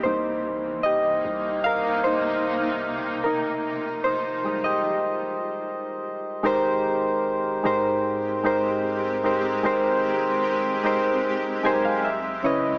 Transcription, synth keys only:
\new Staff \with { instrumentName = "Synth keys" } { \time 4/4 \key aes \major \tempo 4 = 75 << { <ees' c''>4 <g' ees''>4 <bes' f''>8 <ees' c''>4. | <ees' bes'>4 <ees' c''>8. <g' ees''>4.~ <g' ees''>16 r8 | r1 | r2 r8 aes''16 f''16 fes''8 des''8 | } \\ { <g bes ees'>1 | r4. <g aes ees'>4. r4 | <aes ees' g' bes' c''>4. <aes ees' g' bes' c''>4 <aes ees' g' bes' c''>4 <aes ees' g' bes' c''>8 | <aes ees' g' bes' c''>4. <aes ees' g' bes' c''>4 <aes ees' g' bes' c''>8 r8 <des des' fes' ces'' ees''>8 | } >> }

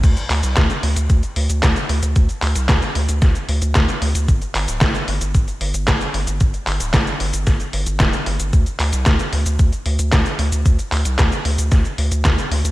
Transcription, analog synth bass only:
\new Staff \with { instrumentName = "Analog synth bass" } { \clef bass \time 4/4 \key c \lydian \tempo 4 = 113 d,16 r16 d,16 c,16 d,16 r16 d,16 d,16 d,16 r16 d,16 d,16 d,16 r16 d,16 d,16 | d,16 r16 d,16 c,16 d,16 r16 d,16 d,16 d,16 r16 d,16 d,16 d,16 r16 d,16 d,16 | g,,16 r16 g,,16 d,,16 g,,16 r16 g,,16 g,,16 g,,16 r16 g,,16 g,,16 g,,16 r16 g,,16 g,,16 | g,,16 r16 g,,16 d,,16 g,,16 r16 g,,16 g,,16 g,,16 r16 g,,16 g,,16 d,,16 r16 g,,16 g,,16 |
d,16 r16 d,16 c,16 d,16 r16 d,16 d,16 d,16 r16 d,16 d,16 d,16 r16 d,16 d,16 | d,16 r16 d,16 c,16 d,16 r16 d,16 d,16 d,16 r16 d,16 d,16 d,16 r16 d,16 d,16 | }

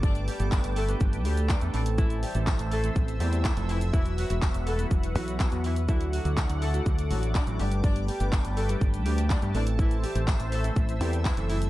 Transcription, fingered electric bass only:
\new Staff \with { instrumentName = "Fingered electric bass" } { \clef bass \time 4/4 \key a \dorian \tempo 4 = 123 g,,8. g,,8 g,,8. g,,8 d,8. e,16 a,,8~ | a,,8. a,,8 a,,8. a,,8 e,8. f,,8. | e,,8. e,,8 e,,8. e,,8 b,,8. e,8. | d,8. d,8 d,8. d,8 a,,8. a,,16 g,,8~ |
g,,8. g,,8 g,,8. g,,8 d,8. g,16 a,,8~ | a,,8. a,,8 a,,8. a,,8 e,8. fis,,8. | }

